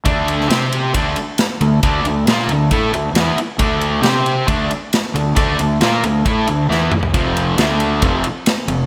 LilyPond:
<<
  \new Staff \with { instrumentName = "Distorted electric guitar" } { \time 4/4 \key d \minor \tempo 4 = 136 <d a d'>4 <c' g' c''>4 <d a d'>8 r4 <d a>8 | <d a d'>8 <d a>8 <bes f' bes'>8 <d a>8 <a e' a'>8 <d a>8 <e b e'>8 r8 | <d a d'>4 <c' g' c''>4 <d a d'>8 r4 <d a>8 | <d a d'>8 <d a>8 <bes f' bes'>8 <d a>8 <a e' a'>8 <d a>8 <e b e'>8 r8 |
<f, c f>4 <d a d'>4 <f, c f>8 r4 <f, c>8 | }
  \new Staff \with { instrumentName = "Fingered electric bass" } { \clef bass \time 4/4 \key d \minor d,4 c4 d,8 r4 d,8 | d,8 d,8 bes,8 d,8 a,8 d,8 e,8 r8 | d,4 c4 d,8 r4 d,8 | d,8 d,8 bes,8 d,8 a,8 d,8 e,8 r8 |
f,,4 d,4 f,,8 r4 f,,8 | }
  \new DrumStaff \with { instrumentName = "Drums" } \drummode { \time 4/4 <bd cymr>8 cymr16 sn16 <cymr sn>8 cymr8 <bd cymr>8 cymr8 <cymr sn>8 cymr8 | <bd cymr>8 cymr8 <cymr sn>16 sn16 cymr8 <bd cymr>8 cymr8 <cymr sn>8 cymr8 | <bd cymr>8 cymr8 <cymr sn>8 cymr8 <bd cymr>8 cymr8 <cymr sn>8 cymr8 | <bd cymr>8 cymr8 <cymr sn>8 cymr8 <bd cymr>8 cymr8 sn8 toml16 tomfh16 |
<bd cymr>8 cymr8 <cymr sn>8 cymr8 <bd cymr>8 cymr8 <cymr sn>8 cymr8 | }
>>